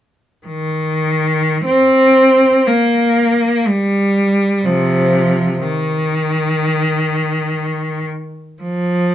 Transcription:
0.46 1.62 D#3 soft
1.65 2.67 C4 medium
2.67 3.66 A#3 soft
3.67 4.66 G3 medium
4.65 5.59 C3 soft
4.65 5.64 F3 medium
5.64 8.05 D#3 medium
8.63 9.15 F3 medium

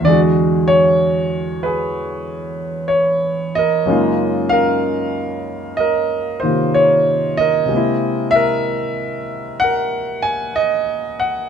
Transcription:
0.00 3.85 E2 soft
0.00 3.87 D3 soft
0.05 3.86 G#3 soft
0.05 1.64 G#4 medium
0.05 0.19 D5 medium
0.11 3.91 F#4 medium
0.68 1.60 C#5 medium
1.63 3.52 G#4 medium
1.63 2.96 B4 medium
2.88 3.55 C#5 medium
3.55 4.51 A#4 medium
3.55 4.54 D#5 medium
3.86 7.70 F#2 soft
3.86 7.70 C#3 soft
3.86 7.67 G#3 medium
3.86 6.42 A#3 soft
3.86 7.72 D#4 soft
3.91 6.44 F4 medium
4.49 5.79 A#4 medium
4.49 5.74 F5 medium
5.77 7.39 A#4 medium
5.77 6.38 D#5 medium
6.40 7.71 D#3 soft
6.40 7.70 A#3 soft
6.40 6.71 C5 medium
6.44 7.64 C3 soft
6.44 7.72 F4 soft
6.74 6.89 C#5 medium
7.37 8.34 A#4 soft
7.37 8.37 D#5 medium
7.66 11.49 C3 soft
7.66 11.49 G#3 soft
7.71 11.49 A#3 soft
7.71 11.49 C4 soft
7.76 11.49 E4 medium
8.31 9.57 E5 loud
8.35 9.62 A#4 medium
9.60 11.49 A#4 medium
9.60 10.26 F#5 medium
10.22 10.57 G#5 medium
10.56 11.22 D#5 medium
11.20 11.49 F#5 medium

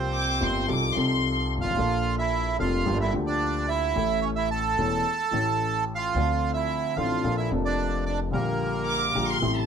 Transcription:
0.00 0.37 C2 medium
0.00 0.37 C3 medium
0.00 0.36 F3 medium
0.00 0.37 A#3 medium
0.00 0.37 C4 medium
0.00 0.66 C4 medium
0.00 0.38 G4 medium
0.00 0.66 C5 medium
0.14 0.40 D6 medium
0.41 0.64 G1 medium
0.41 0.65 G1 medium
0.41 0.64 G2 medium
0.41 0.64 F3 medium
0.41 0.64 A#3 medium
0.41 0.64 C4 medium
0.41 0.64 G4 medium
0.41 0.69 C6 medium
0.67 0.91 C2 medium
0.67 0.92 C2 medium
0.67 0.91 C3 medium
0.67 0.91 F3 medium
0.67 0.91 C4 medium
0.67 0.91 D#4 medium
0.67 0.91 A4 medium
0.67 0.96 D6 medium
0.93 1.73 C2 medium
0.93 1.57 C2 medium
0.93 1.73 C3 medium
0.93 1.72 F3 medium
0.93 1.73 C4 medium
0.93 1.74 D#4 medium
0.93 1.46 C6 medium
0.98 1.74 A4 medium
1.57 1.64 G1 soft
1.57 2.15 F5 medium
1.62 1.71 G#1 medium
1.62 1.71 G#1 soft
1.62 2.16 F4 medium
1.70 1.77 A1 medium
1.70 1.78 A1 medium
1.74 2.55 A#1 medium
1.74 2.55 A#2 medium
1.74 2.54 F3 medium
1.74 2.55 A#3 medium
1.74 2.55 D4 medium
1.79 2.56 A#1 medium
1.79 2.56 A4 medium
2.19 2.58 E4 medium
2.19 2.57 E5 medium
2.59 2.82 F1 medium
2.59 2.83 F1 medium
2.59 2.82 F2 medium
2.59 2.82 F3 medium
2.59 2.82 A#3 medium
2.59 2.83 D4 medium
2.59 2.99 F4 medium
2.59 2.82 A4 medium
2.59 2.98 F5 medium
2.85 3.09 G1 medium
2.85 3.10 G1 medium
2.85 3.09 G2 medium
2.85 3.09 F3 medium
2.85 3.09 A#3 medium
2.85 3.09 D4 medium
2.85 3.09 G4 medium
3.01 3.14 E4 medium
3.01 3.13 E5 medium
3.12 3.91 D2 medium
3.12 3.92 D2 medium
3.12 3.91 D3 medium
3.12 3.91 F3 medium
3.12 3.91 A#3 medium
3.12 3.92 D4 medium
3.16 3.93 G4 medium
3.27 3.66 D4 medium
3.27 3.69 D5 medium
3.68 4.20 E4 medium
3.68 4.25 E5 medium
3.94 4.74 A1 medium
3.94 4.74 A2 medium
3.94 4.73 E3 medium
3.94 4.74 A3 medium
3.94 4.74 C#4 medium
3.94 4.75 A4 medium
4.22 4.30 C#4 medium
4.22 4.28 C#5 medium
4.36 4.50 E4 medium
4.36 4.49 E5 medium
4.51 5.85 A4 medium
4.51 5.84 A5 medium
4.78 5.01 E1 medium
4.78 5.01 E2 medium
4.78 5.01 E3 medium
4.78 5.01 A3 medium
4.78 5.01 C#4 medium
4.78 5.01 A4 medium
5.31 6.11 A1 medium
5.31 6.11 A2 medium
5.31 6.10 E3 medium
5.31 6.11 A3 medium
5.31 6.11 C#4 medium
5.35 6.12 A4 medium
5.95 6.52 F4 medium
5.95 6.51 F5 medium
6.14 6.93 D2 medium
6.14 6.93 D3 medium
6.14 6.92 F3 medium
6.14 6.93 C4 medium
6.14 6.94 D4 medium
6.14 6.94 A4 medium
6.54 6.94 E4 medium
6.54 6.97 E5 medium
6.96 7.20 A1 medium
6.96 7.20 A2 medium
6.96 7.20 F3 medium
6.96 7.20 C4 medium
6.96 7.20 D4 medium
6.96 7.36 F4 medium
6.96 7.20 A4 medium
6.96 7.35 F5 medium
7.24 7.47 A#1 medium
7.24 7.47 A#2 medium
7.24 7.47 F3 medium
7.24 7.47 A#3 medium
7.24 7.47 D4 medium
7.24 7.47 A4 medium
7.37 7.51 E4 medium
7.37 7.50 E5 medium
7.49 8.29 F1 medium
7.49 8.29 F2 medium
7.49 8.28 F3 medium
7.49 8.29 A#3 medium
7.49 8.30 D4 medium
7.54 8.31 A4 medium
7.65 8.04 D4 medium
7.65 8.04 D5 medium
8.06 8.20 D4 medium
8.06 8.18 D5 medium
8.31 9.11 A#1 medium
8.31 9.11 A#2 medium
8.31 9.10 D3 medium
8.31 9.11 G3 medium
8.31 9.11 A#3 medium
8.31 9.39 A#3 medium
8.31 9.12 G4 medium
8.31 9.39 A#4 medium
8.88 9.26 D6 medium
9.15 9.38 A#1 medium
9.15 9.38 A#2 medium
9.15 9.38 D3 medium
9.15 9.38 G3 medium
9.15 9.38 A#3 medium
9.15 9.38 G4 medium
9.29 9.56 C6 medium
9.42 9.65 A1 medium
9.42 9.65 A2 medium
9.42 9.65 C3 medium
9.42 9.65 G3 medium
9.42 9.66 A3 medium
9.42 9.66 E4 medium
9.56 9.66 A5 medium

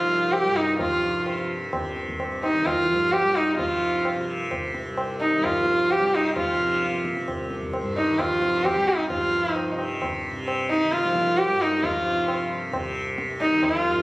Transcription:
0.00 2.31 C2 medium
0.00 0.46 G2 medium
0.00 1.09 C3 medium
0.00 0.45 F3 medium
0.00 0.34 F4 medium
0.32 0.57 G4 medium
0.32 tabla na medium
0.44 2.92 G2 medium
0.44 0.93 G3 medium
0.56 0.79 D#4 medium
0.79 1.46 F4 medium
0.79 tabla tin medium
0.79 tabla ge medium
0.91 1.61 F3 medium
1.09 1.70 C3 soft
1.26 tabla na medium
1.70 3.55 C3 soft
1.70 tabla na medium
1.70 tabla ge medium
1.96 tabla te medium
2.08 tabla ge soft
2.20 tabla na medium
2.32 4.77 C2 soft
2.43 2.68 D#4 medium
2.43 tabla na medium
2.53 2.79 D#3 soft
2.66 3.14 F4 medium
2.66 tabla na medium
2.66 tabla ge medium
2.77 2.92 E3 medium
2.90 5.38 G2 soft
2.90 3.25 F3 medium
2.90 tabla ge soft
3.13 3.37 G4 medium
3.13 tabla na medium
3.24 3.72 G3 medium
3.36 3.57 D#4 medium
3.55 4.16 C3 medium
3.55 4.24 F4 medium
3.59 tabla tin loud
3.59 tabla ge medium
3.70 4.40 F3 soft
4.05 tabla na medium
4.16 5.99 C3 medium
4.51 tabla na medium
4.51 tabla ge medium
4.74 7.20 C2 medium
4.74 tabla te medium
4.97 tabla na medium
5.21 5.46 D#4 medium
5.32 5.57 D#3 soft
5.38 7.81 G2 soft
5.44 5.93 F4 medium
5.44 tabla na medium
5.44 tabla ge medium
5.56 6.03 F3 medium
5.67 tabla te medium
5.90 6.16 G4 medium
5.90 tabla na medium
5.99 6.59 C3 medium
5.99 6.47 G3 medium
6.15 6.37 D#4 medium
6.36 7.02 F4 medium
6.36 tabla tin loud
6.36 tabla ge medium
6.48 7.13 F3 medium
6.59 8.41 C3 medium
6.82 tabla te medium
6.94 tabla te medium
7.05 tabla ke soft
7.17 10.91 C2 medium
7.17 tabla te medium
7.28 tabla na medium
7.28 tabla ge medium
7.50 tabla te medium
7.62 tabla ge soft
7.74 tabla na medium
7.81 9.10 G2 medium
7.97 8.21 D#4 medium
8.08 8.33 D#3 soft
8.19 8.66 F4 medium
8.19 tabla na medium
8.19 tabla ge medium
8.32 8.78 F3 medium
8.41 9.71 C3 medium
8.41 tabla te medium
8.65 8.90 G4 medium
8.65 tabla na medium
8.65 tabla ge medium
8.76 9.21 G3 medium
8.87 9.10 D#4 medium
8.87 tabla te medium
9.10 11.51 G2 medium
9.10 9.54 F4 medium
9.10 tabla tin loud
9.10 tabla ge medium
9.22 9.87 F3 medium
9.54 9.75 D#4 medium
9.54 tabla na medium
9.71 10.31 C3 medium
9.78 tabla na medium
10.02 tabla na medium
10.02 tabla ge medium
10.31 12.10 C3 medium
10.48 tabla na medium
10.70 10.94 D#4 medium
10.82 11.03 D#3 soft
10.91 13.29 C2 medium
10.91 11.39 F4 medium
10.91 tabla te medium
11.04 11.50 F3 medium
11.04 tabla te medium
11.15 tabla ke soft
11.27 tabla te medium
11.38 11.63 G4 medium
11.38 tabla na medium
11.49 13.88 G2 medium
11.49 11.97 G3 medium
11.61 11.85 D#4 medium
11.83 12.51 F4 medium
11.83 tabla tin medium
11.83 tabla ge medium
11.96 12.63 F3 medium
12.10 12.71 C3 medium
12.28 tabla na medium
12.71 14.02 C3 medium
12.71 tabla na medium
12.71 tabla ge medium
13.18 tabla te medium
13.30 14.02 C2 medium
13.41 13.66 D#4 medium
13.41 tabla te medium
13.51 13.75 D#3 medium
13.63 14.02 F4 medium
13.63 tabla na medium
13.63 tabla ge medium
13.73 14.02 F3 medium
13.85 14.02 G2 medium
13.85 tabla ge soft

